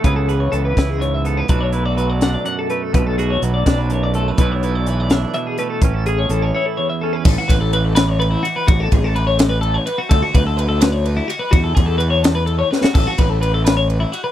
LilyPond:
<<
  \new Staff \with { instrumentName = "Clean electric guitar" } { \time 6/8 \key a \major \tempo 4. = 84 b'16 a'16 gis'16 cis''16 a'16 b'16 b'16 gis'16 cis''16 e''16 a'16 b'16 | b'16 cis''16 b'16 d''16 b'16 d''16 fis''16 d''16 fis''16 a'16 b'16 a'16 | b'16 a'16 gis'16 cis''16 b'16 d''16 d''16 b'16 cis''16 d''16 a'16 b'16 | b'16 cis''16 b'16 d''16 b'16 d''16 e''16 d''16 e''16 gis'16 b'16 a'16 |
b'16 a'16 gis'16 cis''16 a'16 cis''16 cis''16 a'16 cis''16 e''16 a'16 b'16 | a'16 fis'16 b'16 a'16 b'16 a'16 b'16 cis''16 b'16 e'16 fis'16 b'16 | fis'16 a'16 gis'16 a'16 b'16 cis''16 a'16 b'16 a'16 cis''16 b'16 fis'16 | a'16 fis'16 b'16 a'16 b'16 a'16 b'16 cis''16 b'16 e'16 fis'16 b'16 |
fis'16 a'16 gis'16 a'16 b'16 cis''16 a'16 b'16 a'16 cis''16 b'16 fis'16 | a'16 fis'16 b'16 a'16 b'16 a'16 b'16 cis''16 b'16 e'16 fis'16 b'16 | }
  \new Staff \with { instrumentName = "Clean electric guitar" } { \time 6/8 \key a \major << { <e b e' gis'>8 b'4 e'4 b8 | <fis a d' fis'>8 e'16 fis'8. d'4 a8 | a8 fis'4 d'4 a8 | <e a d' e'>8 e'4 d'4 a8 |
cis'8 gis'4 e'4 cis'8 | r2. | r2. | r2. |
r2. | r2. | } \\ { cis4 e4 gis,4 | b,4 fis4 fis,4 | b,4 fis4 fis,4 | b,4 e4 b,4 |
a,4 e4 e,4 | r2. | r2. | r2. |
r2. | r2. | } >> }
  \new Staff \with { instrumentName = "Fingered electric bass" } { \clef bass \time 6/8 \key a \major cis,4 cis,8 cis,4. | b,,2 r4 | b,,4 b,,8 b,,4. | b,,2 r4 |
a,,4 a,,8 r4. | a,,16 r16 a,,2 r8 | a,,8 a,,2 r8 | d,16 r16 d,2 r8 |
e,8 e,2 r8 | a,,16 r16 a,,2 r8 | }
  \new DrumStaff \with { instrumentName = "Drums" } \drummode { \time 6/8 <hh bd>8 hh8 hh8 <hh bd sn>8 hh8 hh8 | <hh bd>8 hh8 hh8 <hh sn>8 hh8 hh8 | <hh bd>8 hh8 hh8 <hh bd sn>8 hh8 hh8 | <hh bd>8 hh8 hh8 <hh sn>8 hh8 hh8 |
<hh bd>8 hh8 hh8 r4. | <cymc bd>8 <bd cymr>8 cymr8 <cymr sn>8 cymr8 cymr8 | <bd cymr>8 <bd cymr>8 cymr8 <cymr sn>8 cymr8 cymr8 | <bd cymr>8 <bd cymr>8 cymr8 <cymr sn>8 cymr8 cymr8 |
<bd cymr>8 <bd cymr>8 cymr8 <cymr sn>8 cymr8 sn16 sn16 | <cymc bd>8 <bd cymr>8 cymr8 <cymr sn>8 cymr8 cymr8 | }
>>